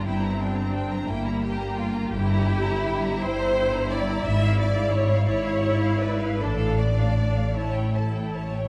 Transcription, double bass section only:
\new Staff \with { instrumentName = "Double bass section" } { \clef bass \time 12/8 \key g \dorian \tempo 4. = 57 g,,4. g,,4. g,,4. g,,4. | gis,,4. gis,,4. a,,4. a,,4. | }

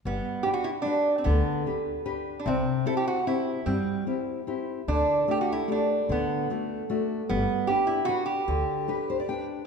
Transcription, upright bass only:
\new Staff \with { instrumentName = "Upright bass" } { \clef bass \time 3/4 \key g \major \tempo 4 = 149 g,,8 r2 r8 | d,8 r2 r8 | c,8 r2 r8 | g,8 r2 r8 |
d,8 r2 r8 | d,8 r2 r8 | g,,8 r2 r8 | d,8 r2 r8 | }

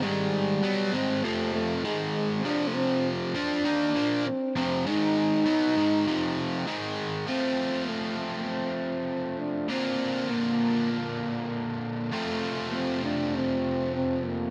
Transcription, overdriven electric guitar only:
\new Staff \with { instrumentName = "Overdriven electric guitar" } { \clef bass \time 4/4 \key f \mixolydian \tempo 4 = 99 <aes, ees aes>4 <b, ges b>8 <aes, ees aes>8 <f, c f>4 <aes, ees aes>4 | <f, c f>4. <f c' f'>8 <ees bes ees'>8 <bes, f bes>8 r8 <f, c f>8 | <aes, ees aes>4 <b, ges b>8 <aes, ees aes>8 <f, c f>4 <aes, ees aes>4 | <f a c' f'>1 |
<bes, d bes d' f'>1 | <f, c f a c' f'>1 | }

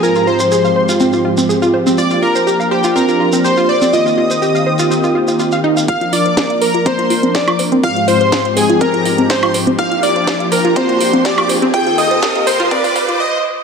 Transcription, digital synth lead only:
\new Staff \with { instrumentName = "Digital synth lead" } { \time 4/4 \key f \dorian \tempo 4 = 123 bes'8 c''2 r4. | d''8 bes'4 g'8 bes'4 c''8 d''8 | ees''2.~ ees''8 r8 | f''8 d''4 bes'8 c''4 d''8 r8 |
f''8 c''4 aes'8 bes'4 c''8 r8 | f''8 d''4 bes'8 c''4 d''8 r8 | g''8 ees''4 c''8 d''4 ees''8 r8 | }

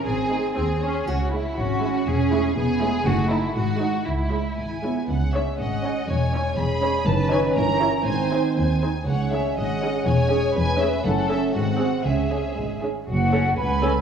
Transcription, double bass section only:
\new Staff \with { instrumentName = "Double bass section" } { \clef bass \time 2/4 \key cis \minor \tempo 4 = 120 gis,,4 dis,4 | cis,4 gis,,4 | e,,4 e,,4 | fis,,4 gis,,4 |
cis,4 gis,,4 | cis,4 gis,,4 | e,,4 e,,4 | fis,,4 g,,4 |
gis,,4 dis,4 | cis,4 gis,,4 | e,,4 e,,4 | fis,,4 gis,,4 |
cis,4 gis,,4 | \key fis \minor fis,,4 cis,4 | }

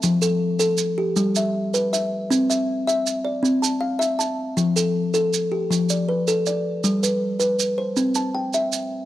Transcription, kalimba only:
\new Staff \with { instrumentName = "Kalimba" } { \time 12/8 \key g \mixolydian \tempo 4. = 106 << { a''8 a'4. r8 g'4 e''4. e''4~ | e''8 e''4. r8 d''4 a''8 f''4 a''4~ | a''8 a'4. r8 g'4 d''8 b'4 d''4~ | d''8 b'4. r8 c''4 a''8 g''4. r8 | } \\ { f4 r8 a'4 r8 g4 r8 b'4 r8 | c'4 r8 e''4 r8 c'4 r8 e''4 r8 | f4 r8 a'4 r8 f4 r8 a'4 r8 | g4 r8 b'4 r8 c'4 r8 e''4 r8 | } >> }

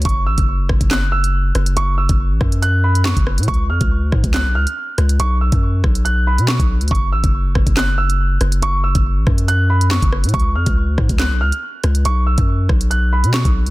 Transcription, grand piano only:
\new Staff \with { instrumentName = "Grand piano" } { \time 4/4 \key fis \minor \tempo 4 = 140 cis'''8 e'''4. fis'''8 e'''4. | cis'''8 e'''4. fis'''8 b''8 cis'''8 r8 | cis'''8 eis'''4. fis'''8 eis'''4. | cis'''8 e'''4. fis'''8 b''8 cis'''8 r8 |
cis'''8 e'''4. fis'''8 e'''4. | cis'''8 e'''4. fis'''8 b''8 cis'''8 r8 | cis'''8 eis'''4. fis'''8 eis'''4. | cis'''8 e'''4. fis'''8 b''8 cis'''8 r8 | }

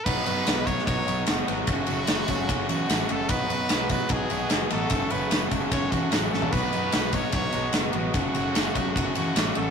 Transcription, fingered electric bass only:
\new Staff \with { instrumentName = "Fingered electric bass" } { \clef bass \time 4/4 \key b \mixolydian \tempo 4 = 148 b,,8 fis,8 b,,4 b,,8 b,,8 fis,,8 gis,,8 | fis,,8 fis,,8 fis,,8 fis,,8 fis,,8 e,8 a,,8 fis,,8 | b,,8 fis,8 b,,4 b,,8 b,,8 fis,,8 a,,8 | fis,,8 fis,,8 fis,,8 fis,,8 fis,,8 e,8 a,,8 a,,8 |
b,,8 fis,8 b,,4 b,,8 b,,8 fis,,8 a,,8 | fis,,8 fis,,8 fis,,8 fis,,8 fis,,8 e,8 a,,8 a,,8 | }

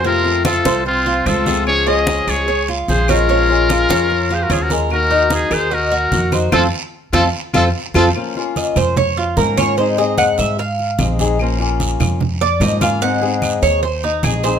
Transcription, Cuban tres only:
\new Staff \with { instrumentName = "Cuban tres" } { \time 4/4 \key bes \minor \tempo 4 = 148 c'4 f'8 c''4 f'8 c'8 aes'8~ | aes'8 des'4 aes'8 des''8 f'4 des''8 | des'4 f'8 des''4 f'8 des'8 bes'8~ | bes'8 ees'4 bes'8 ees''8 ges'4 c''8 |
<c' f' a'>8 r4 <c' f' a'>8 r8 <c' f' a'>8 r8 <c' f' a'>8 | r4 ees''8 c''8 des''8 f'8 bes'8 des''8 | c''8 ees''8 ges''8 e''8 f''4. r8 | r2 r8 d''8 ees''8 f''8 |
ges''4. des''8 c''8 ees'8 aes'8 c''8 | }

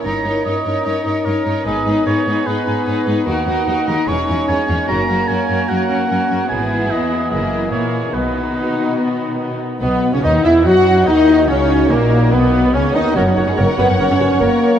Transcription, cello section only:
\new Staff \with { instrumentName = "Cello section" } { \clef bass \time 4/4 \key gis \minor \tempo 4 = 147 g,8 g,8 g,8 g,8 g,8 g,8 g,8 g,8 | gis,8 gis,8 gis,8 gis,8 gis,8 gis,8 gis,8 gis,8 | \key b \major dis,8 dis,8 dis,8 dis,8 e,8 e,8 e,8 e,8 | fis,8 fis,8 fis,8 fis,8 fis,8 fis,8 fis,8 fis,8 |
gis,4 e,4 fis,4 ais,4 | b,2.~ b,8 r8 | b,8. cis16 dis8 e8 fis4 dis4 | cis4 ais,4 b,4 cis8 dis8 |
fis,16 fis,16 fis,16 fis,16 fis,16 r16 fis,16 fis,16 fis,16 fis,16 fis,16 fis,16 fis,16 r8. | }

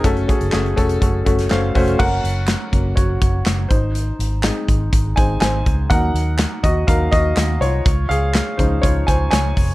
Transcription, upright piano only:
<<
  \new Staff \with { instrumentName = "Upright piano" } { \time 4/4 \key ges \lydian \tempo 4 = 123 << { r2. <a' f''>4 | <bes' ges''>2 <ges' des''>4. <ees' c''>8~ | <ees' c''>4 r4. <c'' aes''>8 <c'' aes''>4 | <bes' ges''>4. <ges' ees''>8 <bes' f''>8 <ges' ees''>4 <f' des''>8~ |
<f' des''>8 <aes' f''>4 <ees' c''>8 <f' des''>8 <c'' aes''>8 <des'' aes''>4 | } \\ { <a des' ges' a'>8 <a des' ges' aes'>8 <a des' ges' aes'>8 <a des' ges' a'>8 <a des' ges' a'>8 <a des' ges' a'>8 <a des' ges' c''>8 <a des' ges' c''>8 | r1 | r1 | r1 |
r1 | } >> }
  \new Staff \with { instrumentName = "Upright piano" } { \time 4/4 \key ges \lydian des4. r2 r8 | <ges bes des'>4. <ges bes des'>8 r2 | r4 <aes c' ees'>4. <aes c' ees'>8 r4 | <ges bes ees'>2 <ges bes ees'>8 r4. |
r4. <f aes des'>4. r4 | }
>>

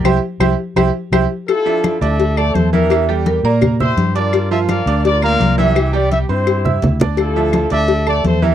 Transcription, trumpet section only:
\new Staff \with { instrumentName = "Trumpet section" } { \time 4/4 \key d \minor \tempo 4 = 168 << { r1 | a'4. e''4 d''8 c''8 bes'8~ | bes'8 r2 c''4 d''8~ | d''8 e''8 f''4 d''8 f''4 e''8~ |
e''8 d''8 e''8 c''4. r4 | a'4. e''4 d''8 c''8 bes'8 | } \\ { r1 | <e' f'>4. a'2 <d' g'>8~ | <d' g'>4. r4 g'4 <f' bes'>8~ | <f' bes'>4 <bes' d''>4 <f' bes'>8 <bes' d''>4 g'8~ |
g'4. <e' g'>2 r8 | <e' f'>4. a'2 <d' g'>8 | } >> }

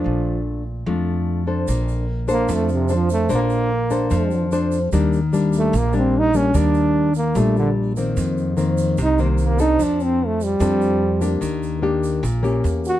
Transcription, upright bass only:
\new Staff \with { instrumentName = "Upright bass" } { \clef bass \time 4/4 \key bes \major \tempo 4 = 148 bes,,2 f,2 | bes,,2 f,2 | bes,,2 f,2 | ees,2 bes,,2 |
ees,2 bes,,2 | f,2 c,2 | f,2 f,2 | ees,2 bes,,4 e,4 | }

